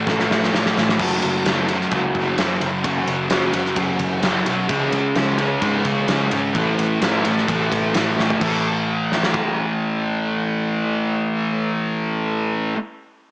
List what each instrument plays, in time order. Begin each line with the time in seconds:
0.07 picked electric bass A1, distorted electric guitar A2 E3 A3, kick, snare
0.20 snare
0.30 picked electric bass A1, snare
0.43 snare
0.53 picked electric bass A1, distorted electric guitar A2 E3 A3, snare
0.66 snare
0.76 picked electric bass A1, distorted electric guitar E3 A3, snare
0.89 snare
0.99 picked electric bass F#1, distorted electric guitar F#2 C#3 F#3, kick, crash
1.22 picked electric bass F#1, ride
1.46 picked electric bass F#1, distorted electric guitar F#2 C#3 F#3, snare, ride
1.68 distorted electric guitar C#3 F#3, ride
1.81 snare
1.91 picked electric bass C#2, distorted electric guitar F#2 C#3 F#3, kick, ride
2.15 picked electric bass F#1, kick, ride
2.38 picked electric bass F#1, distorted electric guitar F#2 C#3 F#3, snare, ride
2.60 picked electric bass F#1, distorted electric guitar C#3 F#3, ride
2.83 picked electric bass F#1, distorted electric guitar F#2 C#3 F#3, kick, ride
3.07 picked electric bass F#1, ride
3.29 picked electric bass F#1, distorted electric guitar F#2 C#3 F#3, snare, ride
3.53 picked electric bass F#1, distorted electric guitar C#3 F#3, ride
3.66 snare
3.76 picked electric bass F#1, distorted electric guitar F#2 C#3 F#3, kick, ride
3.99 picked electric bass F#1, kick, ride
4.22 picked electric bass F#1, distorted electric guitar F#2 C#3 F#3, snare, ride
4.45 picked electric bass B1, distorted electric guitar C#3 F#3, ride
4.68 picked electric bass C#2, distorted electric guitar C#3 G#3 C#4, kick, ride
4.92 picked electric bass C#2, ride
5.15 picked electric bass C#2, distorted electric guitar C#3 G#3 C#4, snare, ride
5.38 distorted electric guitar G#3 C#4, ride
5.61 picked electric bass G#2, distorted electric guitar C#3 G#3 C#4, kick, ride
5.85 picked electric bass C#2, kick, ride
6.08 picked electric bass C#2, distorted electric guitar C#3 G#3 C#4, snare, ride
6.31 picked electric bass G#1, distorted electric guitar G#3 C#4, ride
6.54 picked electric bass A1, distorted electric guitar A2 E3 A3, kick, ride
6.79 picked electric bass A1, ride
7.01 picked electric bass A1, distorted electric guitar A2 E3 A3, snare, ride
7.24 picked electric bass A1, distorted electric guitar E3 A3, ride
7.38 snare
7.48 picked electric bass A1, distorted electric guitar A2 E3 A3, kick, ride
7.72 picked electric bass A1, kick, ride
7.94 picked electric bass A1, distorted electric guitar A2 E3 A3, snare, ride
8.17 picked electric bass A1, distorted electric guitar E3 A3, snare
8.30 floor tom
8.39 picked electric bass A1, distorted electric guitar A2 E3 A3, kick, crash
9.12 snare
9.23 snare
9.34 kick